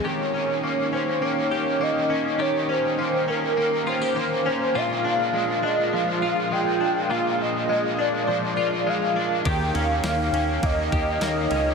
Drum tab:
RD |--------|--------|--------|--------|
TB |--------|--------|--------|--------|
SD |--------|--------|--------|--------|
BD |--------|--------|--------|--------|

RD |xxxxxxxx|
TB |--x---x-|
SD |--o---o-|
BD |o---oo--|